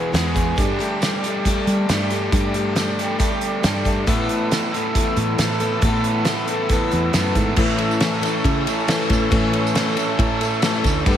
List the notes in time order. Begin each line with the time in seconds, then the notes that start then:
Already playing: E2 B2 E3 G#3 B3 G#4
0.12 E2 B2 E3 G#3 B3 G#4, snare, closed hi-hat
0.34 E3 G#3 B3 G#4, kick, closed hi-hat
0.56 G2 G3 A3 D4 G4 A4 D5 G5 D6, kick, closed hi-hat
0.79 A3 D4 G4, closed hi-hat
1.01 G3 A3 D4 G4, snare, closed hi-hat, tambourine
1.23 G3 A3 D4 G4, closed hi-hat
1.45 G3 A3 D4 G4, kick, closed hi-hat
1.67 G3, closed hi-hat
1.89 G2 G3 A3 D4 G4, snare, closed hi-hat, tambourine
2.10 A3 D4 G4, closed hi-hat
2.32 G2 G3 A3 D4 G4, kick, closed hi-hat
2.54 A3 D4 G4, closed hi-hat
2.75 G3 A3 D4 G4, snare, closed hi-hat, tambourine
2.99 G3 A3 D4 G4, closed hi-hat
3.19 G3 A3 D4 G4, kick, closed hi-hat
3.41 closed hi-hat
3.63 G2 G3 A3 D4 G4, snare, closed hi-hat, tambourine
3.84 A3 D4 G4, kick, closed hi-hat
4.07 A2 E3 A3 B3 A4 E5 B5 E6, kick, closed hi-hat
4.29 closed hi-hat
4.51 E3 A3 B3 A4, snare, closed hi-hat, tambourine
4.72 A2 E3 A3 B3 A4, closed hi-hat
4.95 A2 E3 A3 B3 A4, kick, closed hi-hat
5.17 A2, closed hi-hat
5.38 A2 E3 A3 B3 A4, snare, closed hi-hat, tambourine
5.60 A3 B3 A4, closed hi-hat
5.82 A2 E3 A3 B3 A4, kick, closed hi-hat
6.04 closed hi-hat
6.25 E3 A3 B3, snare, closed hi-hat, tambourine
6.29 A4
6.48 E3 A3 B3 A4, closed hi-hat
6.52 A2
6.69 A2 E3 A3 B3 A4, kick, closed hi-hat
6.91 E2, closed hi-hat
7.13 F#2 A2 E3 A3 B3 A4, snare, closed hi-hat, tambourine
7.35 G#2 A3 B3 A4, kick, closed hi-hat
7.56 A2 E3 A3 C#4 A4 E5 C#6 E6, kick, crash
7.78 A3 C#4 A4, ride
7.91 tambourine
8.00 A2 E3 A3 C#4 A4, snare, ride, tambourine
8.14 tambourine
8.21 A3 C#4 A4, ride, tambourine
8.44 C#3, kick, ride, tambourine
8.67 A3 C#4 A4, ride, tambourine
8.80 tambourine
8.87 E3 A3 C#4 A4, snare, ride, tambourine
9.01 tambourine
9.09 A2 A3 C#4 A4, kick, ride, tambourine
9.31 A2 E3 A3 C#4 A4, kick, ride
9.53 A3 C#4 A4, ride
9.67 tambourine
9.74 A2 E3 A3 C#4 A4, snare, ride, tambourine
9.88 tambourine
9.97 A3 C#4 A4, ride, tambourine
10.19 A2, kick, ride, tambourine
10.41 A3 C#4 A4, ride, tambourine
10.62 E3 A3 C#4 A4, snare, ride, tambourine
10.75 tambourine
10.84 D2 A3 C#4 A4, kick, ride, tambourine
11.06 G2 D3 G3 B3 D4 G4 A4 G5 B5 D6, kick, ride